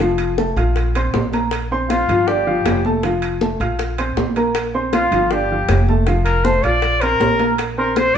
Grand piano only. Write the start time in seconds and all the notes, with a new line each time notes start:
0.00 F3 F4 F5
0.38 A3 A4 A5
0.57 F4 F5 F6
0.96 C4 C5 C6
1.34 A#3 A#4 A#5
1.71 C4 C5 C6
2.09 F3 F4 F5
2.28 D4 D5 D6
2.47 F3 F4 F5
2.85 A3 A4 A5
3.04 F3 F4 F5
3.42 A3 A4 A5
3.60 F4 F5 F6
3.99 C4 C5 C6
4.37 A#3 A#4 A#5
4.74 C4 C5 C6
5.13 F3 F4 F5
5.32 D4 D5 D6
5.51 F3 F4 F5
5.89 A3 A4 A5
6.08 F3 F4 F5
6.45 A3 A4 A5
6.64 F4 F5 F6
7.02 C4 C5 C6
7.40 A#3 A#4 A#5
7.78 C4 C5 C6